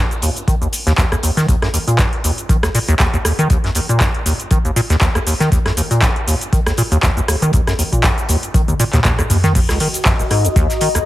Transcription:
0.11 closed hi-hat, shaker
0.22 D#2, closed hi-hat, open hi-hat, shaker
0.36 closed hi-hat, shaker
0.48 D#3, kick, closed hi-hat, shaker
0.62 D#2, closed hi-hat, shaker
0.73 closed hi-hat, open hi-hat, shaker
0.87 D#2, snare, closed hi-hat, shaker
0.98 D#2, kick, snare, clap, closed hi-hat, shaker
1.12 D#2, cross-stick, closed hi-hat, shaker
1.23 D#2, closed hi-hat, open hi-hat, shaker
1.37 D#3, snare, closed hi-hat, shaker
1.48 D#2, kick, closed hi-hat, shaker
1.62 F#2, cross-stick, snare, closed hi-hat
1.74 D#2, closed hi-hat, open hi-hat, shaker
1.88 A#2, closed hi-hat, shaker
1.99 F#2, kick, snare, clap, closed hi-hat, shaker
2.13 closed hi-hat
2.24 D#2, closed hi-hat, open hi-hat, shaker
2.38 closed hi-hat, shaker
2.49 D#3, kick, closed hi-hat, shaker
2.63 D#2, cross-stick, snare, closed hi-hat, shaker
2.75 A#2, closed hi-hat, open hi-hat, shaker
2.88 D#2, closed hi-hat, shaker
3.00 D#2, kick, snare, clap, closed hi-hat, shaker
3.14 D#2, closed hi-hat, shaker
3.25 D#2, cross-stick, closed hi-hat, open hi-hat, shaker
3.39 D#3, closed hi-hat, shaker
3.50 D#2, kick, closed hi-hat, shaker
3.64 F#2, snare, closed hi-hat
3.75 D#2, closed hi-hat, open hi-hat, shaker
3.89 A#2, closed hi-hat, shaker
4.00 F#2, kick, snare, clap, closed hi-hat, shaker
4.14 closed hi-hat
4.26 D#2, closed hi-hat, open hi-hat, shaker
4.40 closed hi-hat, shaker
4.51 D#3, kick, closed hi-hat, shaker
4.65 D#2, closed hi-hat, shaker
4.76 A#2, closed hi-hat, open hi-hat, shaker
4.90 D#2, snare, closed hi-hat, shaker
5.01 D#2, kick, snare, clap, closed hi-hat, shaker
5.15 D#2, cross-stick, closed hi-hat, shaker
5.27 D#2, closed hi-hat, open hi-hat, shaker
5.40 D#3, snare, closed hi-hat, shaker
5.52 D#2, kick, closed hi-hat, shaker
5.66 F#2, cross-stick, snare, closed hi-hat
5.77 D#2, closed hi-hat, open hi-hat, shaker
5.91 A#2, closed hi-hat, shaker
6.02 F#2, kick, snare, clap, closed hi-hat, shaker
6.16 closed hi-hat
6.27 D#2, closed hi-hat, open hi-hat, shaker
6.41 closed hi-hat, shaker
6.53 D#3, kick, closed hi-hat, shaker
6.66 D#2, cross-stick, snare, closed hi-hat, shaker
6.77 A#2, closed hi-hat, open hi-hat, shaker
6.91 D#2, closed hi-hat, shaker
7.03 D#2, kick, snare, clap, closed hi-hat, shaker
7.17 D#2, closed hi-hat, shaker
7.28 D#2, cross-stick, closed hi-hat, open hi-hat, shaker
7.42 D#3, closed hi-hat, shaker
7.53 D#2, kick, closed hi-hat, shaker
7.67 F#2, cross-stick, snare, closed hi-hat, shaker
7.79 D#2, closed hi-hat, open hi-hat, shaker
7.93 A#2, kick, closed hi-hat, shaker
8.04 F#2, kick, snare, clap, closed hi-hat, shaker
8.18 closed hi-hat, shaker
8.29 D#2, closed hi-hat, open hi-hat, shaker
8.43 closed hi-hat, shaker
8.54 D#3, kick, closed hi-hat, high tom, shaker
8.68 D#2, closed hi-hat, high tom, shaker
8.79 A#2, closed hi-hat, open hi-hat, shaker
8.93 D#2, snare, clap, closed hi-hat, mid tom, shaker
9.04 D#2, kick, snare, clap, closed hi-hat, mid tom, shaker
9.19 D#2, cross-stick, closed hi-hat, shaker
9.30 D#2, closed hi-hat, mid tom, open hi-hat, shaker
9.44 D#3, snare, closed hi-hat, mid tom, shaker
9.55 D#2 F#4, kick, closed hi-hat, crash, shaker
9.69 C#2 D#5, cross-stick, snare, closed hi-hat, shaker
9.80 D#3, closed hi-hat, open hi-hat
9.94 closed hi-hat, shaker
10.05 F#2, kick, snare, clap, closed hi-hat, shaker
10.19 D#1 A#5, closed hi-hat, shaker
10.30 G#2, cross-stick, closed hi-hat, open hi-hat
10.45 D#2, closed hi-hat, shaker
10.56 D#2, kick, closed hi-hat, shaker
10.70 snare, closed hi-hat, shaker
10.81 D#3, closed hi-hat, open hi-hat
10.95 D#2, cross-stick, closed hi-hat, shaker

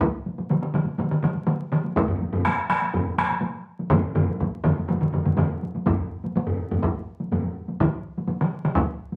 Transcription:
0.01 taiko, taiko high
0.26 taiko high
0.38 taiko high
0.50 taiko mid, taiko high
0.62 taiko mid
0.74 taiko mid, taiko high
0.85 taiko high
0.98 taiko mid, taiko high
1.11 taiko mid
1.22 taiko mid, taiko high
1.35 taiko high
1.46 taiko mid, taiko high
1.72 taiko mid
1.84 taiko high
1.96 taiko, taiko high
2.08 taiko low-mid
2.21 taiko high
2.33 taiko low-mid, taiko high
2.45 taiko rim, taiko high
2.69 taiko rim, taiko high
2.82 taiko high
2.94 taiko low-mid, taiko high
3.18 taiko rim, taiko high
3.31 taiko high
3.42 taiko high
3.80 taiko high
3.90 taiko, taiko low-mid, taiko mid, taiko high
4.15 taiko low-mid, taiko mid, taiko high
4.28 taiko high
4.40 taiko, taiko high
4.63 taiko, taiko low-mid, taiko mid, taiko high
4.78 taiko high
4.88 taiko low-mid, taiko mid, taiko high
5.01 taiko low-mid, taiko mid
5.13 taiko low-mid, taiko mid
5.26 taiko low-mid, taiko mid, taiko high
5.37 taiko low-mid, taiko mid, taiko high
5.62 taiko high
5.75 taiko high
5.86 taiko, taiko low-mid, taiko high
6.24 taiko high
6.36 taiko high
6.47 taiko low-mid
6.71 taiko low-mid, taiko high
6.83 taiko, taiko high
7.21 taiko high
7.32 taiko low-mid, taiko high
7.44 taiko high
7.68 taiko high
7.80 taiko, taiko mid, taiko high
8.17 taiko high
8.29 taiko high
8.41 taiko mid
8.64 taiko mid, taiko high
8.76 taiko, taiko high
9.12 taiko high

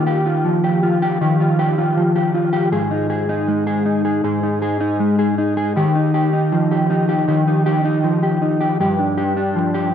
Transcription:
Already playing: D#3 A#3 F4
0.07 G4
0.26 F4
0.44 F3
0.64 G4
0.83 F4
1.02 G4
1.21 D#3 G4
1.40 F4
1.59 G4
1.78 F4
1.97 F3
2.16 G4
2.34 F4
2.53 G4
2.72 G#2 G#4
2.91 D#4
3.10 G#4
3.29 D#4
3.48 G#3
3.67 G#4
3.86 D#4
4.05 G#4
4.24 G#2 G#4
4.43 D#4
4.62 G#4
4.81 D#4
5.00 G#3
5.19 G#4
5.38 D#4
5.57 G#4
5.76 D#3 G4
5.95 D#4
6.14 G4
6.33 D#4
6.52 F3
6.71 G4
6.90 D#4
7.09 G4
7.28 D#3 G4
7.47 D#4
7.66 G4
7.84 D#4
8.04 F3
8.23 G4
8.42 D#4
8.61 G4
8.80 G2 G4
8.99 D4
9.18 G4
9.37 D4
9.55 F3
9.74 G4

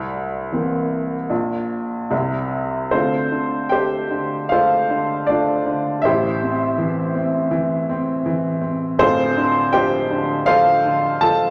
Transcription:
Already playing: C2 D5 F#5 A5
0.52 E3 A#3 C4
1.30 A#1 A#2
2.10 C2 C3
2.91 D2 D3 C4 F4 A4 C5
3.32 D3
3.69 A3 G4 C5 G5
4.11 D3
4.49 A3 F4 A4 C5 F5
4.90 D3
5.27 A3 D4 F4 D5
5.66 D3
6.02 A1 A2 E4 G4 C5 E5
6.42 C4
6.78 E3
7.15 C4
7.51 E3
7.89 C4
8.26 E3
8.61 C4
8.99 D1 D2 C4 F4 A4 C5
9.37 D3
9.73 F3 G4 C5 G5
10.11 D3
10.46 F3 F4 A4 C5 F5
10.85 D3
11.21 F3 A4 F5 A5

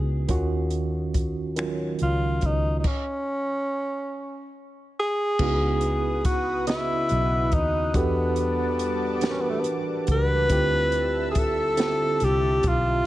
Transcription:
Already playing: C#2 C#3 B3 D#4 F#4
0.28 D#2 D#3 C#4 F4 F#4, kick, closed hi-hat
0.70 closed hi-hat
1.14 kick, closed hi-hat
1.56 D#3 F#3 C#4 F4, finger snap, closed hi-hat
1.99 C#2 F4, closed hi-hat
2.41 C#2, kick, closed hi-hat
2.46 D#4
2.79 D#4
2.84 C#4, kick, crash
5.00 G#4
5.39 C#2 C#3 B3 D#4 E4 F#4 B4 F#5 D#6, kick, crash
5.81 closed hi-hat
6.25 F#4, kick, closed hi-hat
6.67 C#3 B3 E4 F#4 D#5, snare, closed hi-hat
7.09 B1, closed hi-hat
7.52 D#2 D#4, kick, closed hi-hat
7.93 E2 E3 G3 B3 D4 F#4 G4 A4 A5 D6, kick, closed hi-hat
8.36 closed hi-hat
8.79 closed hi-hat
9.21 E3 D4 F#4 G4 A#4, snare, closed hi-hat
9.31 C#4 B4
9.41 B3
9.50 A3
9.60 B3
9.64 G2, closed hi-hat
10.07 C#2, kick, closed hi-hat
10.12 B4
10.49 D2 D3 C4 E4 F4 G4 E5 A5 E6, kick, closed hi-hat
10.92 closed hi-hat
11.31 G#4, closed hi-hat
11.35 A4, kick
11.77 D3 C4 E4 F4 G4, snare, closed hi-hat
12.20 C2, closed hi-hat
12.24 G4
12.63 B1, kick, closed hi-hat
12.68 F4

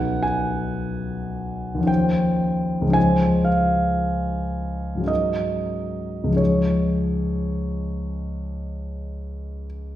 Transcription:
Already playing: B1 F#3 C#4 D#4 B4 F#5
0.23 G#5
1.75 D#2 F3
1.81 C#4 D#4
1.87 C5 G5
2.82 C#2 F3
2.87 C#4 D#4
2.93 C5 G#5
3.45 F5
4.95 G#2 F#3
5.01 C#4 D#4
5.06 A#4 D#5
6.24 C#2 F3
6.30 C#4 D#4
6.36 G#4 C#5

